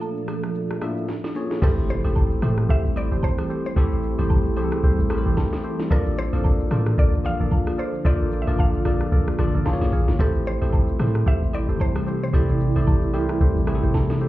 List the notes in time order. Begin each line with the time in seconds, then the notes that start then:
Already playing: A#2 F3 A3 A#3 D4 F4 A4 D5 E5
0.01 low woodblock, shaker
0.17 shaker
0.28 cross-stick, high agogo, shaker
0.43 cross-stick, shaker
0.55 shaker
0.71 cross-stick
0.81 A2 A#3 D4 F4 A4 E5, cross-stick, high agogo, shaker
0.97 shaker
1.08 snare, shaker
1.24 snare, high agogo, shaker
1.35 A#3 C#4 F4 G#4 C#5, open hi-hat, shaker
1.51 snare, shaker
1.62 A1 E3 G3 A3 C4 E4 G4 A4 C5, kick, crash, impact, high agogo, shaker
1.77 shaker
1.89 C5, shaker
2.04 A1 A3 C4 E4 G4 A4 C5, high agogo, shaker
2.15 kick, low woodblock, shaker
2.31 shaker
2.42 A2 A3 C4 E4 G4 A4 C5, cross-stick, high agogo, shaker
2.58 cross-stick, shaker
2.69 A1 G4 A4 C5 E5, kick, shaker
2.85 A1, shaker
2.96 A3 C4 E4 G4 C5 D5, high agogo, shaker
3.11 G1 G4 A4 C5, shaker
3.22 C5, kick, low woodblock, shaker
3.38 cross-stick, high agogo, shaker
3.49 G4 A4 C5, shaker
3.66 C5, shaker
3.76 A1 A3 C4 E4 G4 A4 C5, kick, high agogo, shaker
3.92 shaker
4.03 shaker
4.18 A1 A3 C4 E4 G4 A4 C5, high agogo, shaker
4.30 kick, low woodblock, shaker
4.45 shaker
4.56 C2 A3 C4 E4 G4 G#4 A4 C5, high agogo, shaker
4.64 A4
4.72 cross-stick, shaker
4.83 A1 G4 A4 C5, kick, shaker
4.99 A1, shaker
5.10 A3 C4 E4 G4 A#4, cross-stick, high agogo, shaker
5.18 C5
5.26 A1 G4 A4 C5, shaker
5.36 kick, snare, low woodblock, shaker
5.53 snare, high agogo, shaker
5.64 G4 A4 C5, shaker
5.80 snare, shaker
5.90 A1 D3 F3 A#3 D4 F4 A4 A#4 D5, kick, high agogo, shaker
6.06 shaker
6.17 C5, shaker
6.33 A1 A#3 D4 F4 A4 A#4 C5 D5, high agogo, shaker
6.44 kick, low woodblock, shaker
6.60 shaker
6.71 A2 A#3 D4 F4 A4 A#4 C5 D5, cross-stick, high agogo, shaker
6.86 cross-stick, shaker
6.98 A#1 A4 A#4 D5, kick, shaker
7.13 A#1, shaker
7.24 A#3 D4 F4 A4 F5, high agogo, shaker
7.40 A1 A4 A#4 D5, shaker
7.51 kick, low woodblock, shaker
7.67 cross-stick, high agogo, shaker
7.78 A4 A#4 C5 D5, shaker
7.94 shaker
8.05 A1 A#3 D4 F4 A4 A#4 C5 D5, kick, high agogo, shaker
8.20 shaker
8.32 shaker
8.42 E5
8.47 A1 A#3 D4 F4 A4 A#4 D5, high agogo, shaker
8.58 F5, kick, low woodblock, shaker
8.74 shaker
8.85 A#1 A#3 D4 F4 A4 A#4 D5, cross-stick, high agogo, shaker
9.01 cross-stick, shaker
9.12 A1 A4 A#4 D5, kick, shaker
9.28 cross-stick
9.38 A1 A#3 D4 F4 A4 D5, cross-stick, high agogo, shaker
9.54 A1 A4 A#4 D5, shaker
9.65 A#3 C#4 F4 G#4 C5, kick, snare, low woodblock, shaker
9.73 C#5
9.81 A#1, snare, high agogo, shaker
9.92 A#1 G#4 A#4 C#5, open hi-hat, shaker
10.08 G#1, snare, shaker
10.19 A1 C3 E3 G3 A3 C4 E4 G4 A4 C5, kick, high agogo, shaker
10.35 shaker
10.46 C5, shaker
10.61 A1 A3 C4 E4 G4 A4 C5, high agogo, shaker
10.73 kick, low woodblock, shaker
10.88 shaker
10.99 A2 A3 C4 E4 G4 A4 A#4 C5, cross-stick, high agogo, shaker
11.07 C5
11.15 cross-stick, shaker
11.26 A1 G4 A4 C5 E5, kick, shaker
11.42 A1, shaker
11.53 A3 C4 E4 G4 C5 D5, high agogo, shaker
11.69 G1 G4 A4 C5, shaker
11.79 C5, kick, low woodblock, shaker
11.96 cross-stick, high agogo, shaker
12.07 G4 A4 C5, shaker
12.23 C5, shaker
12.33 A1 A3 C4 E4 G4 A4 C5 D5, kick, high agogo, shaker
12.49 shaker
12.60 shaker
12.76 A1 A3 C4 E4 G4 A4 C5 D5, high agogo, shaker
12.87 kick, low woodblock, shaker
13.03 shaker
13.13 C2 A3 C4 E4 G4 A4 A#4 C5, high agogo, shaker
13.21 C5
13.29 cross-stick, shaker
13.40 A1 G4 A4 C5, kick, shaker
13.56 A1, shaker
13.67 A3 C4 E4 G4 G#4, cross-stick, high agogo, shaker
13.75 A4
13.83 A1 G4 A4 C5, shaker
13.94 kick, snare, low woodblock, shaker
14.10 snare, high agogo, shaker
14.21 G4 A4 C5, shaker